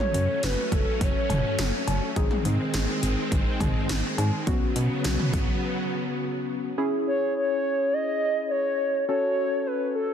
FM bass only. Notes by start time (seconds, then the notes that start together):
0.14 F#2
0.43 F#1
0.72 F#1
1.01 F#1
1.30 F#1
1.59 F#1
1.87 F#1
2.16 G#1
2.45 G#2
2.74 G#1
3.03 G#1
3.32 G#1
3.60 G#1
3.89 G#1
4.18 G#2
4.47 B1
4.76 B2
5.05 B1
5.33 B1